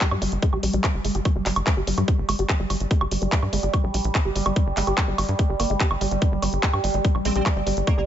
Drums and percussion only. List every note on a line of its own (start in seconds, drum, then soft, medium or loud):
0.01 kick loud
0.01 clap loud
0.01 closed hi-hat medium
0.11 high woodblock medium
0.22 open hi-hat loud
0.32 closed hi-hat medium
0.42 kick loud
0.42 closed hi-hat medium
0.53 high woodblock soft
0.63 open hi-hat loud
0.73 closed hi-hat medium
0.84 kick loud
0.84 clap loud
0.84 closed hi-hat medium
0.84 high woodblock medium
1.05 open hi-hat loud
1.15 closed hi-hat medium
1.25 kick loud
1.25 closed hi-hat medium
1.25 high woodblock soft
1.46 clap medium
1.46 open hi-hat loud
1.56 closed hi-hat medium
1.56 high woodblock medium
1.67 kick loud
1.67 clap loud
1.67 closed hi-hat medium
1.87 open hi-hat loud
1.98 closed hi-hat medium
1.98 high woodblock soft
2.08 kick loud
2.08 closed hi-hat medium
2.29 open hi-hat loud
2.29 high woodblock medium
2.39 closed hi-hat medium
2.49 kick loud
2.49 clap loud
2.49 closed hi-hat medium
2.70 open hi-hat loud
2.70 high woodblock soft
2.80 closed hi-hat medium
2.91 kick loud
2.91 closed hi-hat medium
3.01 high woodblock medium
3.11 open hi-hat loud
3.22 closed hi-hat medium
3.32 kick loud
3.32 clap loud
3.32 closed hi-hat medium
3.42 high woodblock soft
3.53 open hi-hat loud
3.63 closed hi-hat medium
3.73 kick loud
3.73 closed hi-hat medium
3.73 high woodblock medium
3.94 open hi-hat loud
4.05 closed hi-hat medium
4.15 kick loud
4.15 clap loud
4.15 closed hi-hat medium
4.15 high woodblock soft
4.36 open hi-hat loud
4.46 closed hi-hat medium
4.46 high woodblock medium
4.56 kick loud
4.56 closed hi-hat medium
4.77 clap medium
4.77 open hi-hat loud
4.87 closed hi-hat soft
4.87 high woodblock soft
4.98 kick loud
4.98 clap loud
4.98 closed hi-hat medium
5.18 open hi-hat loud
5.18 high woodblock medium
5.29 closed hi-hat soft
5.39 kick loud
5.39 closed hi-hat medium
5.60 open hi-hat loud
5.60 high woodblock soft
5.70 closed hi-hat soft
5.80 kick loud
5.80 clap loud
5.80 closed hi-hat medium
5.91 high woodblock medium
6.01 open hi-hat loud
6.11 closed hi-hat medium
6.22 kick loud
6.22 closed hi-hat medium
6.42 open hi-hat loud
6.42 high woodblock soft
6.53 closed hi-hat soft
6.63 kick loud
6.63 clap loud
6.63 closed hi-hat medium
6.73 high woodblock medium
6.84 open hi-hat loud
7.05 kick loud
7.05 closed hi-hat medium
7.15 high woodblock soft
7.25 open hi-hat loud
7.36 closed hi-hat medium
7.46 kick loud
7.46 clap loud
7.46 closed hi-hat medium
7.46 high woodblock medium
7.67 open hi-hat loud
7.77 closed hi-hat medium
7.87 kick loud
7.87 closed hi-hat medium
7.87 high woodblock soft